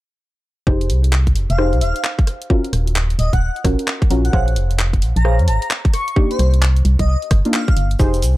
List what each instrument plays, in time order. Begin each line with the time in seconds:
0.67 fm bass F1, synth stab D#4 G4 G#4 C5, kick
0.81 closed hi-hat
0.90 fm bass C2, open hi-hat
1.04 closed hi-hat
1.13 clap
1.27 kick, closed hi-hat
1.36 fm bass F1, open hi-hat
1.50 fm bass F1, digital synth lead F5, closed hi-hat
1.58 synth stab D#4 G4 G#4 C5, cross-stick
1.73 fm bass C2, closed hi-hat
1.81 fm bass D#1, digital synth lead F5, open hi-hat
1.96 closed hi-hat
2.04 clap
2.19 kick, closed hi-hat
2.27 cross-stick, open hi-hat
2.42 closed hi-hat
2.50 synth stab C#4 F4 F#4 A#4, kick
2.64 closed hi-hat
2.73 fm bass D#1, cross-stick, open hi-hat
2.87 closed hi-hat
2.96 clap
3.10 closed hi-hat
3.19 fm bass D#1, digital synth lead D#5, open hi-hat
3.33 fm bass D#1, digital synth lead F#5, kick, closed hi-hat
3.56 closed hi-hat
3.65 fm bass A#1, synth stab C#4 F4 F#4 A#4, kick, cross-stick, open hi-hat
3.79 closed hi-hat
3.88 clap
4.02 kick, closed hi-hat
4.10 fm bass A#1, synth stab C#4 F4 F#4 A#4, open hi-hat
4.25 digital synth lead F#5, closed hi-hat
4.33 fm bass A#1, synth stab G#4 C5 C#5 F5, digital synth lead F#5, kick
4.48 closed hi-hat
4.56 fm bass F1, open hi-hat
4.71 closed hi-hat
4.79 clap
4.93 kick, closed hi-hat
5.02 fm bass A#1, open hi-hat
5.16 fm bass A#1, digital synth lead A#5, closed hi-hat
5.25 synth stab G#4 C5 C#5 F5, cross-stick
5.39 fm bass F2, closed hi-hat
5.48 fm bass G#1, digital synth lead A#5, open hi-hat
5.62 closed hi-hat
5.71 clap
5.85 kick, closed hi-hat
5.94 digital synth lead C#6, cross-stick, open hi-hat
6.08 closed hi-hat
6.16 synth stab A#3 D4 D#4 G4, kick
6.31 digital synth lead C5, closed hi-hat
6.39 fm bass C2, cross-stick, open hi-hat
6.54 closed hi-hat
6.62 clap
6.77 closed hi-hat
6.85 fm bass C2, open hi-hat
6.99 fm bass C2, digital synth lead D#5, kick, closed hi-hat
7.08 digital synth lead D#5
7.22 closed hi-hat
7.31 fm bass G1, kick, cross-stick, open hi-hat
7.45 synth stab A#3 D4 D#4 F4, closed hi-hat
7.54 digital synth lead F5, clap
7.68 digital synth lead F5, kick, closed hi-hat
7.77 fm bass G1, open hi-hat
7.91 closed hi-hat
7.99 fm bass F1, synth stab D#4 G4 G#4 C5, kick, shaker
8.14 closed hi-hat, shaker
8.22 fm bass C2, open hi-hat, shaker